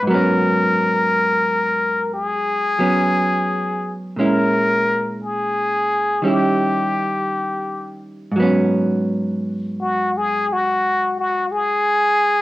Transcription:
0.00 4.15 G#2 soft
0.00 0.10 B4 medium
0.07 2.77 F#3 soft
0.07 2.79 B3 soft
0.07 2.11 A#4 medium
0.14 2.80 C#4 soft
2.14 3.97 G#4 medium
2.79 4.16 F#3 soft
2.79 4.17 B3 soft
2.79 4.18 C#4 soft
4.16 6.24 A#2 soft
4.16 6.23 G#3 soft
4.16 6.24 C#4 soft
4.21 6.26 E4 soft
4.21 5.18 A#4 medium
5.24 6.31 G#4 medium
6.22 8.33 D#3 soft
6.22 8.34 G3 soft
6.22 8.34 C#4 soft
6.27 8.35 E4 soft
6.27 8.02 G4 medium
8.32 12.42 G#2 soft
8.36 12.42 F#3 soft
8.36 12.42 B3 soft
8.42 12.42 C#4 soft
9.81 10.18 F#4 medium
10.17 10.54 G#4 medium
10.53 11.15 F#4 medium
11.19 11.53 F#4 medium
11.52 12.42 G#4 medium

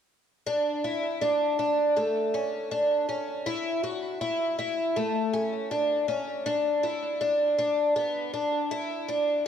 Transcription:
0.46 0.84 D4 medium
0.84 1.22 E4 medium
1.21 1.58 D4 medium
1.59 1.96 D4 medium
1.96 2.34 A3 medium
2.34 2.71 C#4 medium
2.71 3.08 D4 medium
3.09 3.46 C#4 medium
3.46 3.83 E4 medium
3.83 4.21 F#4 medium
4.21 4.57 E4 medium
4.59 4.96 E4 medium
4.96 5.34 A3 medium
5.33 5.71 C#4 medium
5.71 6.08 D4 medium
6.08 6.46 C#4 medium
6.46 6.84 D4 medium
6.83 7.21 E4 medium
7.21 7.57 D4 medium
7.58 7.95 D4 medium
7.96 8.33 B3 medium
8.34 8.71 D4 medium
8.71 9.09 E4 medium
9.09 9.45 D4 medium

